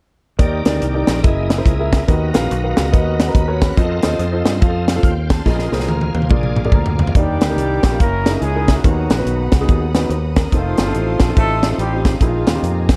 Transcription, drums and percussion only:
0.39 kick medium
0.39 closed hi-hat medium
0.65 snare loud
0.65 closed hi-hat medium
0.82 closed hi-hat medium
1.07 snare loud
1.07 closed hi-hat medium
1.24 kick loud
1.24 closed hi-hat medium
1.50 snare medium
1.50 closed hi-hat medium
1.66 kick medium
1.66 closed hi-hat medium
1.92 kick medium
1.92 snare loud
1.92 closed hi-hat medium
2.08 kick medium
2.08 closed hi-hat medium
2.34 snare loud
2.34 closed hi-hat medium
2.51 closed hi-hat medium
2.77 snare loud
2.77 closed hi-hat medium
2.94 kick loud
2.94 closed hi-hat medium
3.20 snare medium
3.20 closed hi-hat medium
3.35 kick medium
3.35 closed hi-hat medium
3.61 kick medium
3.61 snare loud
3.61 closed hi-hat medium
3.77 kick medium
3.77 closed hi-hat medium
4.02 snare loud
4.02 closed hi-hat medium
4.19 closed hi-hat medium
4.46 snare loud
4.46 closed hi-hat medium
4.62 kick loud
4.62 closed hi-hat medium
4.88 snare medium
4.88 closed hi-hat medium
5.03 kick medium
5.03 closed hi-hat medium
5.30 kick medium
5.30 snare loud
5.30 closed hi-hat medium
5.46 kick medium
5.46 snare medium
5.59 snare soft
5.72 snare medium
5.80 snare soft
5.88 high tom medium
6.01 high tom medium
6.15 high tom medium
6.22 mid tom medium
6.29 kick loud
6.29 mid tom medium
6.43 mid tom medium
6.56 mid tom medium
6.65 mid tom medium
6.72 kick medium
6.72 mid tom medium
6.86 floor tom medium
6.99 floor tom medium
7.07 floor tom medium
7.15 kick medium
7.15 closed hi-hat medium
7.41 snare loud
7.41 closed hi-hat medium
7.58 closed hi-hat medium
7.83 kick medium
7.83 snare medium
7.83 closed hi-hat medium
8.00 kick loud
8.00 closed hi-hat medium
8.26 snare loud
8.26 closed hi-hat medium
8.42 closed hi-hat medium
8.68 kick medium
8.68 snare loud
8.68 closed hi-hat medium
8.84 kick medium
8.84 closed hi-hat medium
9.10 snare loud
9.10 closed hi-hat medium
9.26 closed hi-hat medium
9.52 kick medium
9.52 snare loud
9.52 closed hi-hat medium
9.68 kick loud
9.68 closed hi-hat medium
9.95 snare medium
9.95 closed hi-hat medium
10.10 closed hi-hat medium
10.36 kick medium
10.36 snare loud
10.36 closed hi-hat medium
10.52 kick medium
10.52 closed hi-hat medium
10.77 snare loud
10.77 closed hi-hat medium
10.94 closed hi-hat medium
11.20 kick medium
11.20 snare loud
11.20 closed hi-hat medium
11.36 kick loud
11.36 closed hi-hat medium
11.63 snare medium
11.63 closed hi-hat medium
11.79 closed hi-hat medium
12.05 kick medium
12.05 snare loud
12.05 closed hi-hat medium
12.21 kick medium
12.21 closed hi-hat medium
12.46 snare loud
12.46 closed hi-hat medium
12.64 closed hi-hat medium
12.89 kick medium
12.89 snare loud
12.89 closed hi-hat medium

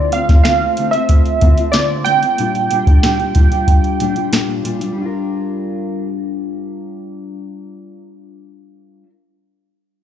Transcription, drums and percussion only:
0.12 closed hi-hat medium
0.29 kick medium
0.29 snare soft
0.29 closed hi-hat soft
0.45 snare medium
0.45 closed hi-hat medium
0.77 closed hi-hat medium
0.93 closed hi-hat soft
1.09 kick medium
1.09 closed hi-hat medium
1.26 closed hi-hat soft
1.41 kick medium
1.41 closed hi-hat medium
1.58 closed hi-hat soft
1.73 snare loud
1.73 closed hi-hat medium
2.06 closed hi-hat medium
2.23 closed hi-hat soft
2.38 closed hi-hat medium
2.55 closed hi-hat soft
2.71 closed hi-hat medium
2.87 kick medium
2.87 closed hi-hat soft
3.03 snare medium
3.03 closed hi-hat medium
3.20 closed hi-hat soft
3.35 kick medium
3.35 closed hi-hat medium
3.52 closed hi-hat soft
3.68 kick medium
3.68 closed hi-hat medium
3.84 closed hi-hat soft
4.00 closed hi-hat medium
4.16 closed hi-hat soft
4.33 snare loud
4.33 closed hi-hat medium
4.65 closed hi-hat medium
4.81 closed hi-hat soft

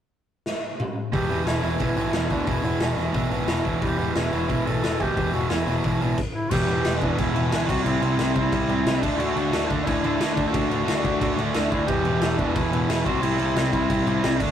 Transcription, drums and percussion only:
0.46 snare medium
0.80 mid tom medium
1.13 kick loud
1.13 open hi-hat medium
1.30 open hi-hat soft
1.47 snare loud
1.47 open hi-hat medium
1.63 open hi-hat medium
1.80 kick loud
1.80 open hi-hat medium
1.97 open hi-hat medium
2.13 snare loud
2.13 open hi-hat medium
2.30 kick medium
2.30 open hi-hat medium
2.47 kick loud
2.47 open hi-hat medium
2.65 open hi-hat soft
2.80 snare loud
2.80 open hi-hat medium
2.98 open hi-hat soft
3.14 kick loud
3.14 open hi-hat medium
3.31 open hi-hat medium
3.48 snare loud
3.48 open hi-hat medium
3.65 kick medium
3.65 open hi-hat medium
3.82 kick loud
3.82 open hi-hat medium
3.99 open hi-hat soft
4.15 snare loud
4.15 open hi-hat medium
4.33 open hi-hat soft
4.50 kick loud
4.50 open hi-hat medium
4.67 open hi-hat medium
4.84 snare loud
4.84 open hi-hat medium
5.00 kick medium
5.00 open hi-hat medium
5.17 kick loud
5.17 open hi-hat medium
5.34 open hi-hat soft
5.50 snare loud
5.50 open hi-hat medium
5.67 open hi-hat medium
5.84 kick loud
5.84 open hi-hat medium
6.01 open hi-hat soft
6.18 kick loud
6.18 crash medium
6.51 kick loud
6.51 crash loud
6.51 crash medium
6.68 crash medium
6.85 snare loud
6.85 crash medium
7.01 kick medium
7.01 crash medium
7.18 kick loud
7.18 crash medium
7.36 crash medium
7.52 snare loud
7.52 crash loud
7.69 kick loud
7.69 crash loud
7.86 crash medium
8.02 crash medium
8.19 snare loud
8.19 crash medium
8.36 kick medium
8.36 crash medium
8.52 kick loud
8.52 crash medium
8.69 crash medium
8.87 snare loud
8.87 crash medium
9.03 kick loud
9.03 crash loud
9.20 crash medium
9.37 crash medium
9.53 snare loud
9.53 crash medium
9.70 kick medium
9.70 crash medium
9.87 kick loud
9.87 crash medium
10.04 crash medium
10.21 snare loud
10.21 crash medium
10.37 kick medium
10.37 crash medium
10.54 kick loud
10.54 crash medium
10.71 crash medium
10.88 snare loud
10.88 crash medium
11.05 kick medium
11.05 crash medium
11.21 kick loud
11.21 crash medium
11.39 crash medium
11.54 snare loud
11.54 crash medium
11.72 kick medium
11.72 crash medium
11.88 kick loud
11.88 crash medium
12.05 crash medium
12.22 snare loud
12.22 crash medium
12.39 kick medium
12.39 crash medium
12.56 kick loud
12.56 crash medium
12.73 crash medium
12.90 snare loud
12.90 crash loud
13.06 kick loud
13.06 crash medium
13.23 crash loud
13.39 crash medium
13.56 snare loud
13.56 crash medium
13.73 kick medium
13.73 crash medium
13.90 kick loud
13.90 crash medium
14.07 crash medium
14.24 snare loud
14.24 crash medium
14.40 kick loud
14.40 crash loud

